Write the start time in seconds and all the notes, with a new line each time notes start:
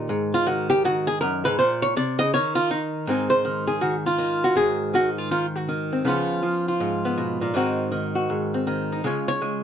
Already playing: D#3
0.09 G#2
0.34 F4
0.46 D#3 F#4
0.70 G4
0.85 D#3 F#4
1.07 G#4
1.21 F#2 A#4
1.45 G#2 B4
1.59 A#2 C5
1.82 C#5
1.97 C3 D5
2.19 C#3 D#5
2.34 D#3 C#5
2.55 F4
2.71 D#4
3.07 G#2 D#3 C4 D#4 G#4
3.30 C5
3.45 D#3
3.67 G#4
3.81 D#3 F#4
4.06 F4
4.18 D#3
4.44 F#4
4.56 G#2 G#4
4.94 D#3 F#4
5.18 F4
5.31 D#3 F4
5.55 F#4
5.69 D#3
5.93 C4
6.05 C#3 F3 B3 C#4 F4
6.43 F3
6.68 F4
6.80 G#2
7.05 B3
7.18 B2
7.41 A#2
7.54 G#2 D#3 C4 D#4 F#4
7.92 D#3
8.15 F#4
8.30 G#2
8.54 C4
8.67 D#3
8.92 D#4
9.04 C#3 G#3 C#4 F4 C#5
9.28 C#5
9.42 G#3